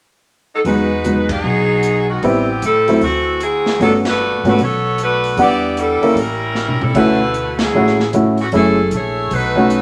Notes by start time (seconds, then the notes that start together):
0.54 F#3 B3 D#4 A4
0.65 E2 F#3 G#3 B3 D#4 F#4 B4, open hi-hat
1.05 F#3 G#3 B3 D#4, closed hi-hat
1.29 F#3 B3 D#4 G#4, kick, ride
1.44 B1
1.83 closed hi-hat
2.09 D#3 G#3 B3 F#4
2.22 A1 E3 G3 B3 C4 E4 G4, open hi-hat
2.62 A2 G3 C4 E4 A4, closed hi-hat
2.88 F#3 A3 C4 E4, open hi-hat
3.01 D2 E3 A3 C4 F#4, open hi-hat
3.40 F#3 C4 E4 G#4, closed hi-hat
3.66 snare
3.79 G1 F#3 A3 B3 C#4 D4 F#4 A4, open hi-hat
4.05 B4, snare, ride
4.09 A3 D4 F#4
4.43 G#1 A3 B3 C#4 F#4, open hi-hat
4.48 A3 D4 F#4 B4
4.59 B1, open hi-hat
4.63 B3 F#4 A4 C#5
4.98 A3, closed hi-hat
5.02 D4 F#4 B4
5.24 open hi-hat
5.37 E2 G3 B3 D4 F#5, open hi-hat
5.41 E4 G4 D5
5.77 G3 D4 E4 A4, closed hi-hat
6.02 A#3 C#4 E4 A#4, muted upright bass stroke, open hi-hat
6.15 A1 G3 C#4 E4 A#4, open hi-hat
6.55 snare
6.68 mid tom
6.81 G3 C#4 E4 A4, mid tom
6.94 D2 A3 C#4 E4 F#4 B4, kick, crash
7.34 closed hi-hat
7.59 F#3 C#4 E4 G#4, snare, ride
7.73 A1 A3 C#4 E4 F#4
7.87 snare
8.00 snare
8.13 A3 C#4 E4 F#4, closed hi-hat
8.38 E3 A3 C#4 F#4, open hi-hat
8.52 F#1 E3 A3 C#4 E4 G#4 A4, open hi-hat
8.91 A#1 A3 E4 C#5, closed hi-hat
8.95 G#4
9.31 B1 A3 D#4 F#4 B4, open hi-hat
9.56 A3 C#4 D#4 F#4
9.70 closed hi-hat